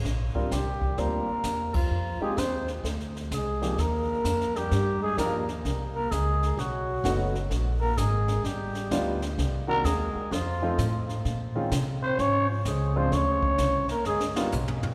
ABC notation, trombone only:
X:1
M:4/4
L:1/8
Q:"Swing" 1/4=128
K:Fphr
V:1 name="Trombone" clef=bass
z2 =G,2 B,3 F,- | F, A, C z3 A,2 | B,3 =G,2 A, B, z | z B, A,2 ^F,3 z |
z B, A,2 =G,3 z | z B, A,2 F,3 z | z3 C D F, A, C | D3 B, A, z3 |]